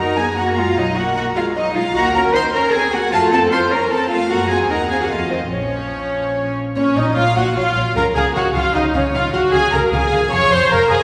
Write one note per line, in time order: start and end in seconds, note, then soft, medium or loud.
0.00 0.73 F#2 medium
0.00 0.18 D#4 medium
0.00 0.18 A#4 medium
0.00 0.17 A#5 medium
0.00 1.92 A#5 soft
0.17 0.38 B3 medium
0.17 0.26 G#4 medium
0.17 0.37 G#5 medium
0.36 0.58 A#3 medium
0.36 0.57 F#4 medium
0.36 0.44 F#5 medium
0.56 0.66 G#3 medium
0.56 0.78 F4 medium
0.56 0.76 F5 medium
0.75 1.93 B1 medium
0.75 0.85 F#3 medium
0.75 0.97 D#4 medium
0.75 0.96 D#5 medium
0.95 1.15 A#3 medium
0.95 1.16 F#4 medium
0.95 1.15 F#5 medium
1.16 1.24 A#3 medium
1.16 1.25 F#4 medium
1.16 1.24 F#5 medium
1.36 1.56 G#3 medium
1.36 1.44 F4 medium
1.36 1.44 F5 medium
1.56 1.65 F#3 medium
1.56 1.75 D#4 medium
1.56 1.75 D#5 medium
1.75 1.84 G#3 medium
1.75 1.95 F4 medium
1.75 1.95 F5 medium
1.95 2.28 D#2 medium
1.95 2.15 A#3 medium
1.95 2.15 F#4 loud
1.95 2.15 F#5 medium
1.95 2.14 A#5 medium
2.14 2.35 C#4 medium
2.14 2.34 A#4 medium
2.14 2.22 A#5 medium
2.34 2.54 D#4 medium
2.34 2.54 C5 medium
2.34 2.42 C6 medium
2.53 2.73 C#4 medium
2.53 2.73 A#4 loud
2.53 2.73 A#5 medium
2.73 2.81 C4 medium
2.73 2.93 G#4 medium
2.73 2.93 G#5 medium
2.92 3.01 A#3 medium
2.92 3.12 F#4 medium
2.92 3.13 F#5 medium
3.12 3.45 F2 medium
3.12 3.32 A3 medium
3.12 3.32 F4 loud
3.12 3.20 F5 medium
3.12 3.31 A5 medium
3.31 3.52 C4 medium
3.31 3.52 A4 medium
3.31 3.41 A5 medium
3.51 3.72 F4 medium
3.51 3.71 C5 medium
3.51 3.60 C6 medium
3.71 3.92 C#4 medium
3.71 3.91 A#4 medium
3.71 3.91 A#5 medium
3.91 4.11 C4 medium
3.91 4.11 A4 medium
3.91 4.11 A5 medium
4.10 4.31 A3 medium
4.10 4.30 F4 medium
4.10 4.31 F5 medium
4.30 4.67 F#2 medium
4.30 4.39 A#3 medium
4.30 4.50 F#4 medium
4.30 4.50 F#5 medium
4.30 4.49 A#5 medium
4.50 4.70 C4 medium
4.50 4.70 G#4 medium
4.50 4.58 G#5 medium
4.50 4.71 G#5 medium
4.69 5.11 D#2 medium
4.69 4.78 D#4 medium
4.69 4.78 A#4 medium
4.69 4.91 F#5 medium
4.69 4.90 A#5 medium
4.90 5.00 C4 medium
4.90 5.00 G#4 medium
4.90 5.10 F5 soft
4.90 5.00 G#5 medium
5.00 5.11 A#3 medium
5.00 5.11 F#4 medium
5.00 5.10 F#5 soft
5.10 5.52 F2 medium
5.10 5.18 A3 medium
5.10 5.32 F4 medium
5.10 5.52 D#5 medium
5.10 5.31 F5 medium
5.30 5.39 D#3 soft
5.30 5.39 C4 medium
5.30 5.38 C5 medium
5.51 6.53 A#1 soft
5.51 6.53 F3 medium
5.51 6.54 C#4 medium
5.51 6.54 C#5 medium
5.51 6.54 C#5 soft
6.76 6.84 A#1 medium
6.76 6.84 A#2 medium
6.76 6.95 C#4 medium
6.76 6.84 C#5 medium
6.76 6.95 C#5 medium
6.96 7.04 A#1 medium
6.96 7.04 A#2 medium
6.96 7.17 D#4 medium
6.96 7.05 C#5 medium
6.96 7.16 D#5 medium
7.15 7.24 A#1 medium
7.15 7.23 A#2 medium
7.15 7.36 F4 medium
7.15 7.25 C#5 medium
7.15 7.36 F5 medium
7.36 7.44 A#1 medium
7.36 7.44 A#2 medium
7.36 7.56 F#4 medium
7.36 7.45 C#5 soft
7.36 7.56 F#5 medium
7.55 7.63 A#1 medium
7.55 7.64 A#2 medium
7.55 7.95 F4 medium
7.55 7.64 C#5 medium
7.55 7.95 F5 medium
7.75 7.84 A#1 medium
7.75 7.83 A#2 medium
7.75 7.85 C#5 medium
7.95 8.03 C#2 medium
7.95 8.04 C#3 medium
7.95 8.04 A#4 medium
7.95 8.04 F5 medium
7.95 8.04 A#5 medium
8.15 8.23 C#2 medium
8.15 8.23 C#3 medium
8.15 8.34 G#4 loud
8.15 8.24 F5 medium
8.15 8.23 G#5 medium
8.35 8.43 C#2 medium
8.35 8.43 C#3 medium
8.35 8.54 F#4 medium
8.35 8.43 F5 medium
8.35 8.44 F#5 medium
8.54 8.62 C#2 medium
8.54 8.63 C#3 medium
8.54 8.74 F4 medium
8.54 8.63 F5 medium
8.54 8.74 F5 medium
8.74 8.82 C#2 medium
8.74 8.83 C#3 medium
8.74 8.94 D#4 medium
8.74 8.83 D#5 medium
8.74 8.83 F5 medium
8.94 9.02 C#2 medium
8.94 9.02 C#3 medium
8.94 9.03 C#4 medium
8.94 9.14 C#5 medium
8.94 9.03 F5 medium
9.14 9.22 C#2 medium
9.14 9.22 C#3 medium
9.14 9.33 F4 medium
9.14 9.34 F5 medium
9.14 9.23 F5 medium
9.33 9.42 C#2 medium
9.33 9.42 C#3 medium
9.33 9.53 F#4 medium
9.33 9.41 F5 medium
9.33 9.41 F#5 medium
9.51 9.61 C#2 medium
9.51 9.61 C#3 medium
9.51 9.73 G#4 loud
9.51 9.61 F5 soft
9.51 9.71 G#5 medium
9.71 9.81 C#2 medium
9.71 9.80 C#3 medium
9.71 9.92 A#4 medium
9.71 9.80 F5 medium
9.71 9.79 A#5 medium
9.91 10.00 C#2 medium
9.91 10.00 C#3 medium
9.91 10.31 G#4 medium
9.91 10.01 F5 medium
9.91 10.30 G#5 medium
10.11 10.20 C#2 medium
10.11 10.20 C#3 medium
10.11 10.19 F5 medium
10.31 10.40 F1 medium
10.31 10.39 F2 medium
10.31 10.50 C#5 loud
10.31 10.41 F5 medium
10.31 10.51 C#6 medium
10.50 10.59 F1 medium
10.50 10.59 F2 medium
10.50 10.71 C5 loud
10.50 10.60 F5 medium
10.50 10.70 C6 medium
10.69 10.78 F1 medium
10.69 10.79 F2 medium
10.69 10.90 A#4 loud
10.69 10.79 F5 medium
10.69 10.89 A#5 medium
10.89 10.98 F1 medium
10.89 10.98 F2 medium
10.89 11.03 G#4 medium
10.89 10.99 F5 medium
10.89 11.03 G#5 medium